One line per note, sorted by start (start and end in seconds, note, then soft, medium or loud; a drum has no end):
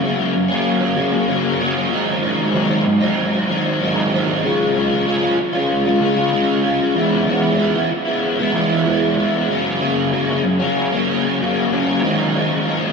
0.03 0.50 F#2 loud
0.03 0.34 C#3 loud
0.03 0.21 F#3 medium
0.03 0.18 A#3 loud
0.03 0.17 C#4 loud
0.18 0.35 F#3 medium
0.18 0.34 A#3 medium
0.18 0.35 C#4 medium
0.35 muted overdriven electric guitar stroke soft
0.49 0.82 F#3 medium
0.49 0.81 A#3 medium
0.49 0.79 C#4 medium
0.80 0.95 F#3 medium
0.80 0.96 A#3 medium
0.80 0.97 C#4 medium
0.96 1.26 C#3 medium
0.96 1.12 F#3 medium
0.96 1.11 A#3 medium
0.96 1.10 C#4 medium
1.11 1.27 F#3 medium
1.11 1.28 A#3 medium
1.11 1.28 C#4 medium
1.27 1.89 F#2 medium
1.27 1.57 C#3 medium
1.27 1.59 F#3 loud
1.27 1.59 A#3 loud
1.27 1.60 C#4 loud
1.58 1.89 C#3 medium
1.58 1.77 F#3 medium
1.58 1.75 A#3 medium
1.58 1.74 C#4 medium
1.75 1.91 F#3 medium
1.75 1.90 A#3 medium
1.75 1.89 C#4 medium
1.91 2.51 G#2 medium
1.91 2.20 D#3 medium
1.91 2.21 F#3 medium
1.91 2.23 C4 loud
1.91 2.23 D#4 medium
2.21 2.53 D#3 medium
2.21 2.53 F#3 medium
2.21 2.55 C4 medium
2.21 2.55 D#4 medium
2.53 3.01 G#2 loud
2.53 2.84 D#3 medium
2.53 2.70 F#3 loud
2.53 2.70 C4 medium
2.53 2.68 D#4 loud
2.69 2.85 F#3 medium
2.69 2.86 C4 medium
2.69 2.85 D#4 medium
2.85 muted overdriven electric guitar stroke medium
3.00 3.34 F#3 medium
3.00 3.32 C4 medium
3.00 3.31 D#4 medium
3.32 3.48 F#3 medium
3.32 3.49 C4 medium
3.32 3.50 D#4 medium
3.48 3.80 D#3 medium
3.48 3.66 F#3 medium
3.48 3.65 C4 medium
3.48 3.63 D#4 medium
3.65 3.81 F#3 medium
3.65 3.82 C4 medium
3.65 3.82 D#4 medium
3.80 4.42 G#2 medium
3.80 4.11 D#3 medium
3.80 4.13 F#3 loud
3.80 4.13 C4 medium
3.80 4.14 D#4 loud
4.13 4.42 D#3 medium
4.13 4.30 F#3 medium
4.13 4.29 C4 medium
4.13 4.27 D#4 medium
4.28 4.44 F#3 medium
4.28 4.43 C4 medium
4.28 4.42 D#4 medium
4.44 4.73 C#3 medium
4.44 4.76 G#3 loud
4.44 4.76 C#4 medium
4.44 4.77 F4 medium
4.75 5.05 C#3 medium
4.75 5.06 G#3 medium
4.75 5.07 C#4 medium
4.75 5.08 F4 medium
5.06 5.38 C#3 medium
5.06 5.24 G#3 medium
5.06 5.22 C#4 medium
5.06 5.20 F4 loud
5.21 5.38 G#3 medium
5.21 5.38 C#4 medium
5.21 5.38 F4 medium
5.39 muted overdriven electric guitar stroke soft
5.53 5.88 G#3 medium
5.53 5.86 C#4 medium
5.53 5.84 F4 medium
5.85 6.00 G#3 medium
5.85 6.01 C#4 medium
5.85 6.01 F4 medium
6.00 6.31 C#3 medium
6.00 6.19 G#3 medium
6.00 6.17 C#4 medium
6.00 6.15 F4 loud
6.16 6.33 G#3 soft
6.16 6.33 C#4 medium
6.16 6.34 F4 medium
6.32 6.63 C#3 medium
6.32 6.64 G#3 medium
6.32 6.65 C#4 loud
6.32 6.65 F4 loud
6.64 6.94 C#3 medium
6.64 6.82 G#3 medium
6.64 6.79 C#4 medium
6.64 6.78 F4 medium
6.79 6.96 G#3 medium
6.79 6.95 C#4 medium
6.79 6.94 F4 medium
6.95 7.25 E3 medium
6.95 7.27 G#3 loud
6.95 7.28 B3 loud
6.95 7.28 E4 medium
7.26 7.57 E3 medium
7.26 7.59 G#3 medium
7.26 7.58 B3 medium
7.26 7.60 E4 medium
7.58 7.90 E3 medium
7.58 7.77 G#3 medium
7.58 7.75 B3 medium
7.58 7.73 E4 loud
7.74 7.91 G#3 medium
7.74 7.90 B3 medium
7.74 7.91 E4 medium
7.91 muted overdriven electric guitar stroke medium
8.06 8.41 G#3 medium
8.06 8.38 B3 medium
8.06 8.38 E4 medium
8.39 8.53 G#3 medium
8.39 8.54 B3 medium
8.39 8.54 E4 medium
8.53 8.84 E3 medium
8.53 8.71 G#3 medium
8.53 8.70 B3 medium
8.53 8.68 E4 medium
8.69 8.87 G#3 medium
8.69 8.86 B3 medium
8.69 8.87 E4 medium
8.85 9.16 E3 medium
8.85 9.18 G#3 loud
8.85 9.18 B3 loud
8.85 9.19 E4 medium
9.17 9.48 E3 medium
9.17 9.36 G#3 medium
9.17 9.33 B3 medium
9.17 9.32 E4 medium
9.33 9.50 G#3 medium
9.33 9.49 B3 medium
9.33 9.48 E4 medium
9.49 10.10 F#2 loud
9.49 9.78 C#3 medium
9.49 9.81 F#3 loud
9.49 9.80 A#3 medium
9.49 9.81 C#4 loud
9.80 10.12 C#3 medium
9.80 10.12 F#3 medium
9.80 10.12 A#3 medium
9.80 10.13 C#4 medium
10.11 10.60 F#2 medium
10.11 10.42 C#3 loud
10.11 10.30 F#3 loud
10.11 10.29 A#3 loud
10.11 10.27 C#4 loud
10.28 10.43 F#3 medium
10.28 10.43 A#3 medium
10.28 10.43 C#4 medium
10.44 muted overdriven electric guitar stroke soft
10.59 10.93 F#3 medium
10.59 10.92 A#3 medium
10.59 10.91 C#4 medium
10.92 11.08 F#3 medium
10.92 11.09 A#3 medium
10.92 11.10 C#4 medium
11.08 11.40 C#3 medium
11.08 11.26 F#3 medium
11.08 11.24 A#3 medium
11.08 11.23 C#4 medium
11.24 11.40 F#3 medium
11.24 11.41 A#3 medium
11.24 11.42 C#4 medium
11.40 12.02 F#2 medium
11.40 11.70 C#3 medium
11.40 11.71 F#3 medium
11.40 11.72 A#3 loud
11.40 11.73 C#4 loud
11.71 12.02 C#3 medium
11.71 11.89 F#3 medium
11.71 11.87 A#3 medium
11.71 11.85 C#4 medium
11.86 12.02 F#3 medium
11.86 12.02 A#3 medium
11.86 12.01 C#4 medium
12.02 12.65 G#2 loud
12.02 12.33 D#3 loud
12.02 12.34 F#3 loud
12.02 12.35 C4 loud
12.02 12.36 D#4 loud
12.34 12.66 D#3 medium
12.34 12.66 F#3 medium
12.34 12.67 C4 medium
12.34 12.68 D#4 medium
12.66 12.93 G#2 medium
12.66 12.93 D#3 loud
12.66 12.84 F#3 medium
12.66 12.83 C4 loud
12.66 12.81 D#4 loud
12.82 12.93 F#3 medium
12.82 12.93 C4 medium
12.82 12.93 D#4 medium